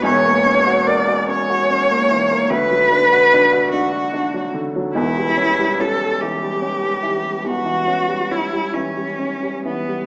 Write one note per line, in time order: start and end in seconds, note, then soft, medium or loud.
0.03 2.46 E1 medium
0.03 2.46 E2 medium
0.03 0.89 C#5 loud
0.26 0.59 A#3 medium
0.46 0.79 C#4 medium
0.67 1.00 F#4 medium
0.87 1.20 A#4 medium
0.87 1.28 D5 loud
1.08 1.41 F#4 medium
1.29 1.61 C#4 medium
1.29 2.51 C#5 loud
1.50 1.82 F#4 medium
1.71 2.02 C#4 medium
1.90 2.22 A#3 medium
2.11 2.43 E3 medium
2.31 2.51 A#3 medium
2.50 4.90 D2 medium
2.50 3.71 B4 loud
2.71 3.03 F#3 medium
2.92 3.24 D4 medium
3.13 3.44 F#4 medium
3.34 3.65 D4 medium
3.53 3.84 F#4 medium
3.71 4.05 D4 medium
3.71 4.51 F#4 medium
3.93 4.25 F#4 medium
4.13 4.45 D4 medium
4.34 4.66 F#3 soft
4.54 4.87 D3 medium
4.76 4.95 F#3 medium
4.94 7.41 E1 medium
4.94 7.41 E2 medium
4.94 5.81 E4 loud
5.17 5.49 G3 medium
5.37 5.70 C#4 medium
5.59 5.92 G3 medium
5.79 6.12 C#4 medium
5.79 6.22 A4 medium
6.01 6.33 G3 soft
6.21 6.54 E3 soft
6.21 7.47 G4 medium
6.43 6.75 G3 medium
6.62 6.95 C#4 medium
6.83 7.16 G3 medium
7.03 7.36 E3 medium
7.23 7.57 G3 soft
7.44 10.06 E2 medium
7.44 8.33 F#4 loud
7.65 8.00 E3 soft
7.88 8.22 C#4 soft
8.08 8.44 G3 medium
8.31 8.66 C#4 soft
8.31 8.76 E4 medium
8.53 8.88 G3 medium
8.74 9.11 E3 soft
8.74 9.65 C#4 medium
8.97 9.33 G3 soft
9.20 9.56 C#4 soft
9.43 9.79 G3 soft
9.65 10.02 E3 soft
9.65 10.06 B3 medium
9.88 10.06 G3 soft